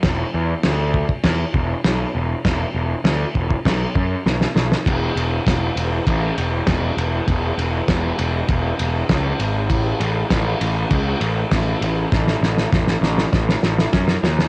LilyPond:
<<
  \new Staff \with { instrumentName = "Picked electric bass" } { \clef bass \time 4/4 \key b \dorian \tempo 4 = 99 e,,8 e,8 d,4 e,8 e,,8 b,,8 e,,8 | e,,8 e,,8 d,8 e,,8 b,,8 fis,8 b,,8 b,,8 | \key e \major e,,8 e,,8 e,,8 e,,8 a,,8 e,,8 e,,8 e,,8 | e,,8 e,,8 e,,8 e,,8 e,,8 e,,8 cis,8 gis,,8 |
a,,8 a,,8 a,,8 a,,8 cis,8 a,,8 a,,8 a,,8 | a,,8 a,,8 a,,8 a,,8 a,,8 a,,8 fis,8 dis,8 | }
  \new DrumStaff \with { instrumentName = "Drums" } \drummode { \time 4/4 <cymc bd sn>4 <cymc sn>8 bd16 bd16 <cymc bd sn>8 bd8 <cymc sn>4 | <cymc bd sn>4 <cymc sn>8 bd16 bd16 <cymc bd sn>8 bd8 sn16 sn16 sn16 sn16 | <bd cymr>8 cymr8 <bd cymr sn>8 cymr8 <bd cymr>8 cymr8 <bd cymr sn>8 cymr8 | <bd cymr>8 cymr8 <bd cymr sn>8 cymr8 <bd cymr>8 cymr8 <bd cymr sn>8 cymr8 |
<bd cymr>8 cymr8 <bd cymr sn>8 cymr8 <bd cymr>8 cymr8 <bd cymr sn>8 cymr8 | <bd sn>16 sn16 sn16 sn16 <bd sn>16 sn16 sn16 sn16 <bd sn>16 sn16 sn16 sn16 <bd sn>16 sn16 sn16 sn16 | }
>>